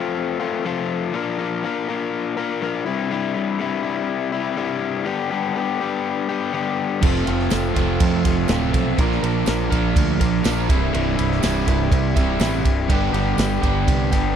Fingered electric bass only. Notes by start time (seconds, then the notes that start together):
7.03 F1
7.28 F1
7.52 F1
7.76 F1
8.00 F2
8.25 F1
8.49 D1
8.74 B1
8.98 A#1
9.23 A#1
9.47 A#1
9.72 A#1
9.96 D2
10.20 A#1
10.45 A#1
10.69 C1
10.94 C1
11.18 C1
11.43 C1
11.67 C1
11.92 C2
12.16 C1
12.40 A1
12.65 C1
12.89 G1
13.13 G1
13.38 G1
13.63 G1
13.88 C2
14.12 G1